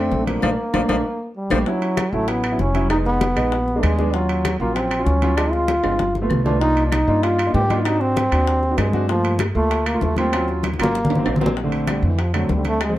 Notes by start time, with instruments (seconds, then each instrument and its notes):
Already playing: grand piano A3 C4 D4, tenor saxophone A3, trombone C4
0.12 upright bass A#1, high bongo, low bongo, high conga
0.19 grand piano A3 C4 D4
0.26 tenor saxophone F3, trombone A#3, high bongo, high conga, high timbale
0.42 upright bass A#1, tenor saxophone F3, grand piano A3 A#3 D4, low bongo, high conga, high timbale, claves
0.74 upright bass A#1, tenor saxophone F3, grand piano A3 A#3 D4, low bongo, high conga, high timbale, claves
0.88 upright bass A#1, tenor saxophone F3, grand piano A3 A#3 D4, low bongo, high conga, high timbale, claves
1.36 trombone G3
1.50 upright bass A#1, tenor saxophone F3, grand piano A3 A#3 D4, low bongo, high conga, high timbale, claves
1.66 grand piano F#3 C#4 E4, trombone F#3, high bongo, high conga
1.82 high bongo, high conga, high timbale
1.97 high bongo, high conga, high timbale, claves
2.12 upright bass A1, grand piano F#3 C#4 E4, trombone A3, high conga
2.28 trombone B3, high bongo, high conga, high timbale
2.43 high bongo, high conga, high timbale, claves
2.51 grand piano F#3 C#4 E4
2.59 upright bass F1, trombone C#4, high bongo, low bongo, high conga
2.74 grand piano F#3 C#4 E4, high bongo, high conga, high timbale
2.90 grand piano G#3 B3 D#4, trombone D#4, high bongo, high conga, high timbale, claves
3.05 trombone B3, high bongo, high conga
3.21 high bongo, high conga, high timbale
3.36 upright bass A#1, grand piano G#3 B3 D#4, high conga, high timbale, claves
3.52 high bongo, high conga
3.68 high bongo, high conga
3.76 grand piano G#3 B3 D4
3.83 upright bass D#2, trombone G#3, high bongo, low bongo, high conga, high timbale, claves
3.98 grand piano G#3 B3 D4, high bongo, high conga
4.14 trombone F#3, grand piano F#3 C#4 F4, high bongo, high conga
4.29 high bongo, high conga, high timbale
4.45 high bongo, high conga, high timbale, claves
4.59 upright bass A#1, grand piano F#3 C#4 F4, trombone A#3, high conga
4.74 trombone C4, high bongo, high conga, high timbale
4.91 high bongo, high conga, high timbale, claves
4.99 grand piano F#3 C#4 F4
5.05 upright bass D2, trombone C#4, high bongo, low bongo, high conga
5.22 grand piano F#3 C#4 F4, high bongo, high conga, high timbale
5.36 grand piano G#3 C4 F4, trombone D4, high bongo, high conga, high timbale, claves
5.52 trombone F4, high bongo, high conga
5.68 high bongo, high conga, high timbale
5.83 upright bass G1, grand piano G#3 C4 F4, high conga, high timbale, claves
5.99 high bongo, high conga
6.15 high bongo, high conga
6.22 grand piano A3 B3 F4
6.30 upright bass C2, high bongo, low bongo, low conga, claves
6.45 grand piano A3 B3 F4, trombone D4, high bongo, low conga, low timbale
6.60 grand piano A#3 D4 D#4 F4, trombone D#4, high bongo, high conga
6.77 high bongo, high conga, high timbale
6.86 trombone D4
6.91 trombone D#4, high bongo, high conga, high timbale, claves
7.07 upright bass G2, grand piano A#3 D4 D#4 F4, high conga
7.23 trombone F4, high bongo, high conga, high timbale
7.39 high bongo, high conga, high timbale, claves
7.46 grand piano A#3 D4 D#4 F4
7.54 upright bass G#2, trombone G4, high bongo, low bongo, high conga, low timbale
7.69 grand piano A#3 D4 D#4 F4, high bongo, high conga, high timbale
7.84 grand piano C4 D4 F#4, trombone D#4, high bongo, high conga, high timbale, claves
8.01 trombone C4, high bongo, high conga
8.16 high bongo, high conga, high timbale
8.31 upright bass D#2, grand piano C4 D4 F#4, high conga, high timbale, claves
8.47 high bongo, high conga
8.63 high bongo, high conga
8.70 grand piano C4 D4 F#4
8.78 upright bass G2, trombone G#3, high bongo, low bongo, high conga, high timbale, low timbale, claves
8.93 grand piano C4 D4 F#4, high bongo, high conga
9.08 trombone F3, grand piano A3 A#3 F4, high bongo, high conga
9.24 high bongo, high conga, high timbale
9.39 high bongo, high conga, high timbale, claves
9.55 upright bass D2, grand piano A3 A#3 F4, trombone A3, high conga
9.71 high bongo, high conga, high timbale
9.86 trombone A#3, high bongo, high conga, high timbale, claves
9.94 grand piano A3 A#3 F4
10.01 upright bass D#2, trombone A3, high bongo, low bongo, high conga
10.16 grand piano A3 A#3 F4, trombone C4, high bongo, high conga, high timbale
10.32 grand piano F#3 C#4 F4, high bongo, high conga, high timbale, claves
10.48 high bongo, high conga
10.63 high bongo, high conga, high timbale
10.74 high conga
10.79 upright bass G#1, grand piano F#3 C#4 F4, trombone A#3, high timbale, claves
10.83 low conga
10.95 high bongo
11.05 low conga
11.10 high timbale
11.15 grand piano F#3 A#3 C4, low conga
11.26 upright bass A#1, high timbale, claves
11.36 low conga
11.40 grand piano F#3 A#3 C4, low bongo, low timbale
11.46 low conga
11.57 high bongo, high conga
11.64 grand piano D3 A3 C4
11.72 high bongo, high conga, high timbale
11.87 trombone G3, high bongo, high conga, high timbale, claves
12.02 upright bass F2, trombone E3, high conga
12.18 trombone F3, high bongo, high conga, high timbale
12.33 grand piano D3 A3 C4, trombone F#3, high bongo, high conga, high timbale, claves
12.49 upright bass D2, trombone G3, high bongo, low bongo, high conga
12.57 grand piano D3 A3 C4
12.65 trombone A3, high bongo, high conga, high timbale
12.81 trombone G#3, high bongo, high conga, high timbale, claves
12.89 grand piano F3 G#3 C4